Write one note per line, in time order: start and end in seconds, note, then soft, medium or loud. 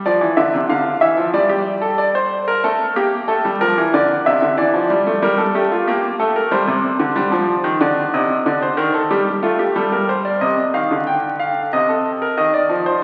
0.06 0.22 F3 medium
0.06 0.26 D5 medium
0.21 0.37 E3 medium
0.37 0.53 D3 medium
0.37 0.57 E5 medium
0.54 0.70 C3 medium
0.69 0.90 D3 medium
0.69 0.90 F5 medium
1.01 1.18 E3 medium
1.01 1.22 E5 medium
1.17 1.34 F3 medium
1.33 2.59 G3 medium
1.33 1.50 D5 medium
1.49 1.70 G4 medium
1.82 1.98 A4 medium
1.98 2.14 D5 loud
2.15 2.35 C5 medium
2.48 2.63 A#4 medium
2.64 2.84 A3 medium
2.64 2.84 A4 medium
2.96 3.16 A#3 medium
2.96 3.16 G4 medium
3.28 3.44 A3 medium
3.28 3.48 A4 medium
3.45 3.60 G3 medium
3.61 3.77 F3 medium
3.61 3.81 A#4 loud
3.78 3.93 E3 medium
3.94 4.14 D3 medium
3.94 4.14 D5 medium
4.26 4.42 C3 medium
4.26 4.46 E5 medium
4.42 4.58 D3 medium
4.58 4.73 E3 medium
4.58 5.20 D5 medium
4.74 4.90 F3 medium
4.90 5.06 G3 medium
5.07 5.22 A3 medium
5.22 5.42 G3 loud
5.22 5.38 A#4 medium
5.38 5.54 A4 medium
5.55 5.75 A3 medium
5.55 5.71 G4 medium
5.72 5.87 F4 medium
5.88 6.08 A#3 medium
5.88 6.07 G4 medium
6.20 6.40 A3 medium
6.20 6.35 A4 medium
6.36 6.51 A#4 medium
6.51 6.67 G3 medium
6.51 7.77 C5 medium
6.67 6.88 C3 medium
6.99 7.16 D3 medium
7.16 7.32 G3 medium
7.32 7.52 F3 medium
7.64 7.80 D#3 medium
7.81 8.01 D3 medium
7.81 8.01 D5 medium
8.14 8.34 C3 medium
8.14 8.34 D#5 medium
8.46 8.66 D3 medium
8.46 8.62 D5 medium
8.62 8.78 C5 medium
8.77 8.98 D#3 medium
8.77 8.94 A#4 medium
8.94 9.10 A4 medium
9.10 9.31 G3 medium
9.10 9.31 G4 medium
9.43 9.63 A3 medium
9.43 9.59 F4 medium
9.59 9.75 G4 medium
9.76 10.40 G3 medium
9.76 9.92 A4 medium
9.92 10.08 A#4 medium
10.09 10.25 C5 medium
10.25 10.41 D5 medium
10.41 10.62 C3 medium
10.41 10.62 D#5 medium
10.74 10.90 D#3 medium
10.74 10.94 F5 medium
10.91 11.70 D3 medium
11.07 11.27 G5 medium
11.39 11.60 F5 medium
11.73 12.36 C3 medium
11.73 11.89 D#5 medium
11.89 12.09 A4 medium
12.22 12.37 A#4 medium
12.37 12.58 D#3 medium
12.37 12.54 D#5 medium
12.54 12.74 D5 medium
12.69 12.90 F3 medium
12.86 13.02 C5 medium